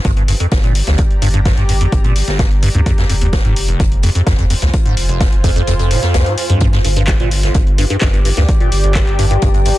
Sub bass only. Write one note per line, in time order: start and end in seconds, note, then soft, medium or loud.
0.05 0.35 G1 loud
0.52 0.82 G1 medium
0.87 0.95 D2 medium
1.22 1.52 G1 medium
1.57 1.87 G1 medium
1.92 2.22 G1 loud
2.39 2.69 G1 medium
2.75 2.83 D2 medium
3.10 3.40 F1 loud
3.45 3.75 F1 medium
3.80 4.10 F1 loud
4.27 4.57 F1 medium
4.62 4.70 C2 medium
4.97 5.27 F1 loud
5.32 5.62 F1 medium
5.67 5.97 F1 loud
6.14 6.23 C2 medium
6.50 6.79 G2 medium
6.85 7.15 G1 loud
7.20 7.50 G1 medium
7.55 7.85 G1 loud
8.02 8.32 G1 medium
8.37 8.45 D2 medium
8.72 9.02 G1 loud
9.07 9.37 G1 medium
9.42 9.72 G1 loud